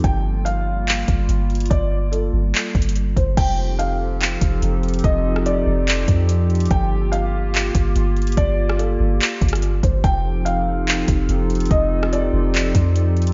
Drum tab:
CC |------------------------------------------------------------------------------------------------|------------------------------------------------------------------------------------------------|x-----------------------------------------------------------------------------------------------|------------------------------------------------------------------------------------------------|
HH |x-----------------------x-----------------------x-----------x-----------x-----------x--x--x--x--|x-----------------------x-----------------------x-----------x---x---x---x-----------x-----------|x-----------------------x-----------------------x-----------x-----------x-----------x--x--x--x--|x-----------------------x-----------------------x-----------x-----------x-----------x--x--x--x--|
CP |------------------------------------------------x-----------------------------------------------|------------------------------------------------x-----------------------------------------------|------------------------------------------------x-----------------------------------------------|------------------------------------------------x-----------------------------------------------|
SD |------------------------------------------------------------------------------------------------|------------------------------------------------------------------------------------------------|------------------------------------------------------------------------------------------------|------------------r-----------------------------------------------------------------------------|
BD |o-----------------------------------------------------------o-----------------------------------|o-----------------------------------------------------------o-----------------------o-----------|o-----------------------------------------------------------o-----------------------------------|o-----------------------------------------------------------o-----------------------------------|

CC |------------------------------------------------------------------------------------------------|------------------------------------------------------------------------------------------------|------------------------------------------------------------------------------------------------|------------------------------------------------------------------------------------------------|
HH |x-----------------------x-----------------------x-----------x-----------x-----------x--x--x--x--|x-----------------------x-----------------------x-----------x---x---x---x-----------x-----------|x-----------------------x-----------------------x-----------x-----------x-----------x--x--x--x--|x-----------------------x-----------------------x-----------x-----------x-----------x--x--x-----|
CP |------------------------------------------------x-----------------------------------------------|------------------------------------------------x-----------------------------------------------|------------------------------------------------x-----------------------------------------------|------------------------------------------------x-----------------------------------------------|
SD |------------------------------------------------------------------------------------------------|------------------r-----------------------------------------------r-----------------------------|------------------------------------------------------------------------------------------------|------------------r-----------------------------------------------------------------------------|
BD |o-----------------------------------------------------------o-----------------------------------|o-----------------------------------------------------------o-----------------------o-----------|o-----------------------------------------------------------o-----------------------------------|o-----------------------------------------------------------o-----------------------------------|